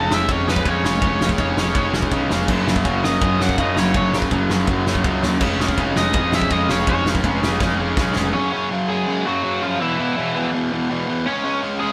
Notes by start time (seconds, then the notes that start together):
Already playing: G#3 C#4 A5
0.11 F1 C#3 G#3 C#4 E5, snare
0.29 F2 C#3 G#3 C#4 C#5, kick, ride
0.48 C#3 G#3 C#4 B4, snare
0.56 kick
0.66 F2 C#3 G#3 C#4 C#5, kick, ride
0.84 F1 C#3 G#3 C#4 C#5, snare
1.01 F1 C#3 G#3 C#4, kick, ride
1.21 C#3 G#3 C#4, snare
1.29 kick
1.38 F1 C#3 G#3 C#4, kick, ride
1.57 F1 C#3 G#3 C#4, snare
1.75 F1 C#3 G#3 C#4, kick, ride
1.93 C#3 G#3 C#4, snare
2.02 kick
2.11 B1 C#3 G#3 C#4, kick, ride
2.30 F1 C#3 G#3 C#4, snare
2.48 F#1 F#2 C#3 F#3, kick, crash
2.66 F#2 C#3 F#3, snare
2.76 kick
2.85 F#1 F#2 C#3 F#3, kick, ride
3.04 F#1 F#2 C#3 F#3 D#5, snare
3.21 F#2 C#3 F#3, kick, ride
3.41 F#2 C#3 F#3 F#5, snare
3.49 kick
3.58 F#2 C#3 F#3 D#5, kick, ride
3.76 F#1 F#2 C#3 F#3 C#5, snare
3.94 F#1 F#2 C#3 F#3 C#5, kick, ride
4.13 F#2 C#3 F#3, snare
4.22 kick
4.31 F#1 F#2 C#3 F#3, kick, ride
4.49 F#1 F#2 C#3 F#3, snare
4.67 F#1 F#2 C#3 F#3, kick, ride
4.87 F#2 C#3 F#3, snare
4.95 kick
5.04 C#2 F#2 C#3 F#3, kick, ride
5.22 D#2 F#2 C#3 F#3, snare
5.41 F1 C#3 G#3 C#4, kick, crash
5.59 C#3 G#3 C#4, snare
5.68 kick
5.78 F1 C#3 G#3 C#4, kick, ride
5.96 F1 C#3 G#3 C#4 D#5, snare
6.13 F2 C#3 G#3 C#4, kick, ride
6.32 C#3 G#3 C#4 E5, snare
6.42 kick
6.50 F2 C#3 G#3 C#4 D#5, kick, ride
6.69 F1 C#3 G#3 C#4 C#5, snare
6.87 F1 C#3 G#3 C#4 C#5, kick, ride
7.06 C#3 G#3 C#4, snare
7.15 kick
7.24 F1 C#3 G#3 C#4, kick, ride
7.42 F1 C#3 G#3 C#4, snare
7.60 F1 C#3 G#3 C#4, kick, snare
7.79 C#3 G#3 C#4
7.97 B1 C#3 G#3 C#4, kick, snare
8.15 F1 C#3 G#3 C#4, snare
8.34 F#2 C#3 F#3 C#4 C#5
8.52 F#2 C#3 F#3
8.71 F#2 C#3 F#3
8.89 F#2 C#3 F#3 G#3 G#4
9.08 F#2 C#3 F#3
9.26 F#2 C#3 F#3 F#4
9.43 F#2 C#3 F#3
9.62 F#2 C#3 F3 F#3 F4
9.80 E2 B2 E3 E4
9.99 E2 B2 E3
10.17 E2 B2 E3
10.35 E2 B2 E3
10.54 E2 B2 E3
10.72 E2 B2 E3
10.90 E2 B2 E3
11.08 E2 B2 E3
11.26 C#3 G#3 C#4 C#5
11.44 C#3 G#3 C#4
11.62 C#3 G#3 C#4
11.80 C#3 G#3 C#4 G#4